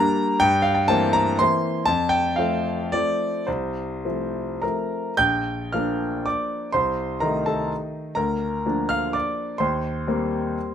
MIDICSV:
0, 0, Header, 1, 2, 480
1, 0, Start_track
1, 0, Key_signature, -2, "major"
1, 0, Tempo, 472441
1, 403, Time_signature, 3, 2, 24, 8
1, 893, Tempo, 497100
1, 2333, Tempo, 550459
1, 3293, Tempo, 578592
1, 4253, Tempo, 541516
1, 5693, Tempo, 479616
1, 10189, End_track
2, 0, Start_track
2, 0, Title_t, "Grand piano"
2, 0, Program_c, 0, 0
2, 0, Note_on_c, 0, 55, 61
2, 0, Note_on_c, 0, 58, 61
2, 0, Note_on_c, 0, 62, 69
2, 0, Note_on_c, 0, 82, 125
2, 368, Note_off_c, 0, 55, 0
2, 372, Note_off_c, 0, 58, 0
2, 374, Note_off_c, 0, 62, 0
2, 400, Note_off_c, 0, 82, 0
2, 404, Note_on_c, 0, 79, 117
2, 416, Note_on_c, 0, 43, 80
2, 587, Control_c, 0, 64, 127
2, 633, Note_on_c, 0, 77, 88
2, 639, Note_off_c, 0, 79, 0
2, 757, Note_on_c, 0, 79, 78
2, 760, Note_off_c, 0, 77, 0
2, 885, Note_off_c, 0, 43, 0
2, 890, Note_off_c, 0, 79, 0
2, 893, Note_on_c, 0, 81, 106
2, 906, Note_on_c, 0, 52, 61
2, 911, Note_on_c, 0, 58, 69
2, 913, Note_on_c, 0, 60, 73
2, 1136, Note_on_c, 0, 82, 106
2, 1145, Note_off_c, 0, 81, 0
2, 1358, Note_off_c, 0, 52, 0
2, 1360, Note_off_c, 0, 58, 0
2, 1361, Note_off_c, 0, 60, 0
2, 1384, Note_on_c, 0, 84, 108
2, 1385, Note_off_c, 0, 82, 0
2, 1395, Note_on_c, 0, 52, 58
2, 1402, Control_c, 0, 64, 0
2, 1403, Note_on_c, 0, 58, 56
2, 1411, Note_on_c, 0, 60, 64
2, 1812, Note_off_c, 0, 52, 0
2, 1816, Note_off_c, 0, 58, 0
2, 1820, Note_off_c, 0, 60, 0
2, 1836, Note_on_c, 0, 81, 112
2, 1845, Note_off_c, 0, 84, 0
2, 1858, Note_on_c, 0, 41, 72
2, 2035, Control_c, 0, 64, 127
2, 2065, Note_on_c, 0, 79, 100
2, 2073, Note_off_c, 0, 81, 0
2, 2323, Note_on_c, 0, 77, 87
2, 2324, Note_off_c, 0, 41, 0
2, 2326, Note_off_c, 0, 79, 0
2, 2345, Note_on_c, 0, 53, 55
2, 2348, Note_on_c, 0, 57, 59
2, 2352, Note_on_c, 0, 60, 60
2, 2781, Note_off_c, 0, 53, 0
2, 2782, Note_off_c, 0, 57, 0
2, 2784, Note_off_c, 0, 60, 0
2, 2805, Note_off_c, 0, 77, 0
2, 2814, Note_on_c, 0, 74, 99
2, 2823, Control_c, 0, 64, 0
2, 2824, Note_on_c, 0, 53, 50
2, 2824, Note_on_c, 0, 57, 45
2, 2827, Note_on_c, 0, 60, 53
2, 3265, Note_off_c, 0, 53, 0
2, 3265, Note_off_c, 0, 57, 0
2, 3266, Note_off_c, 0, 60, 0
2, 3289, Note_on_c, 0, 72, 63
2, 3294, Note_off_c, 0, 74, 0
2, 3302, Note_on_c, 0, 36, 57
2, 3497, Control_c, 0, 64, 127
2, 3762, Note_off_c, 0, 36, 0
2, 3775, Note_on_c, 0, 53, 47
2, 3778, Note_on_c, 0, 60, 44
2, 3779, Note_on_c, 0, 57, 41
2, 4222, Note_off_c, 0, 53, 0
2, 4223, Note_off_c, 0, 57, 0
2, 4223, Note_off_c, 0, 60, 0
2, 4243, Note_on_c, 0, 82, 67
2, 4251, Note_off_c, 0, 72, 0
2, 4252, Note_on_c, 0, 70, 56
2, 4255, Note_on_c, 0, 53, 38
2, 4261, Note_on_c, 0, 57, 43
2, 4263, Control_c, 0, 64, 0
2, 4267, Note_on_c, 0, 60, 44
2, 4702, Note_off_c, 0, 53, 0
2, 4702, Note_off_c, 0, 70, 0
2, 4705, Note_off_c, 0, 57, 0
2, 4707, Note_off_c, 0, 60, 0
2, 4731, Note_off_c, 0, 82, 0
2, 4736, Note_on_c, 0, 91, 104
2, 4744, Note_on_c, 0, 79, 77
2, 4746, Note_on_c, 0, 34, 59
2, 4934, Control_c, 0, 64, 127
2, 5196, Note_off_c, 0, 79, 0
2, 5216, Note_off_c, 0, 34, 0
2, 5225, Note_on_c, 0, 89, 69
2, 5226, Note_off_c, 0, 91, 0
2, 5234, Note_on_c, 0, 77, 55
2, 5237, Note_on_c, 0, 53, 49
2, 5243, Note_on_c, 0, 58, 47
2, 5249, Note_on_c, 0, 62, 53
2, 5664, Note_off_c, 0, 77, 0
2, 5692, Note_off_c, 0, 89, 0
2, 5696, Note_on_c, 0, 86, 80
2, 5705, Control_c, 0, 64, 0
2, 5707, Note_on_c, 0, 74, 63
2, 6137, Note_off_c, 0, 53, 0
2, 6140, Note_off_c, 0, 58, 0
2, 6143, Note_off_c, 0, 62, 0
2, 6145, Note_off_c, 0, 74, 0
2, 6165, Note_on_c, 0, 84, 92
2, 6172, Note_off_c, 0, 86, 0
2, 6179, Note_on_c, 0, 72, 73
2, 6185, Note_on_c, 0, 36, 58
2, 6347, Control_c, 0, 64, 127
2, 6627, Note_off_c, 0, 72, 0
2, 6645, Note_on_c, 0, 82, 77
2, 6649, Note_off_c, 0, 36, 0
2, 6651, Note_on_c, 0, 70, 55
2, 6653, Note_off_c, 0, 84, 0
2, 6663, Note_on_c, 0, 51, 53
2, 6666, Note_on_c, 0, 57, 49
2, 6670, Note_on_c, 0, 63, 53
2, 6888, Note_off_c, 0, 70, 0
2, 6900, Note_on_c, 0, 81, 77
2, 6903, Note_off_c, 0, 82, 0
2, 6913, Note_on_c, 0, 69, 58
2, 7137, Note_off_c, 0, 69, 0
2, 7147, Note_off_c, 0, 81, 0
2, 7159, Control_c, 0, 64, 0
2, 7573, Note_off_c, 0, 51, 0
2, 7575, Note_off_c, 0, 57, 0
2, 7577, Note_off_c, 0, 63, 0
2, 7592, Note_on_c, 0, 82, 84
2, 7606, Note_on_c, 0, 38, 64
2, 7607, Note_on_c, 0, 70, 60
2, 7779, Control_c, 0, 64, 127
2, 8082, Note_off_c, 0, 38, 0
2, 8100, Note_on_c, 0, 58, 50
2, 8105, Note_on_c, 0, 53, 48
2, 8109, Note_on_c, 0, 62, 54
2, 8311, Note_off_c, 0, 70, 0
2, 8331, Note_on_c, 0, 89, 93
2, 8343, Note_off_c, 0, 82, 0
2, 8344, Note_on_c, 0, 77, 68
2, 8571, Note_off_c, 0, 77, 0
2, 8575, Note_on_c, 0, 86, 79
2, 8581, Note_off_c, 0, 89, 0
2, 8585, Note_on_c, 0, 74, 65
2, 8603, Control_c, 0, 64, 0
2, 9002, Note_off_c, 0, 58, 0
2, 9005, Note_off_c, 0, 53, 0
2, 9006, Note_off_c, 0, 74, 0
2, 9007, Note_off_c, 0, 62, 0
2, 9025, Note_on_c, 0, 84, 82
2, 9033, Note_off_c, 0, 86, 0
2, 9042, Note_on_c, 0, 72, 67
2, 9046, Note_on_c, 0, 39, 66
2, 9241, Control_c, 0, 64, 127
2, 9507, Note_off_c, 0, 39, 0
2, 9517, Note_on_c, 0, 55, 50
2, 9524, Note_on_c, 0, 58, 54
2, 9525, Note_on_c, 0, 60, 51
2, 10012, Control_c, 0, 64, 0
2, 10189, Note_off_c, 0, 55, 0
2, 10189, Note_off_c, 0, 58, 0
2, 10189, Note_off_c, 0, 60, 0
2, 10189, Note_off_c, 0, 72, 0
2, 10189, Note_off_c, 0, 84, 0
2, 10189, End_track
0, 0, End_of_file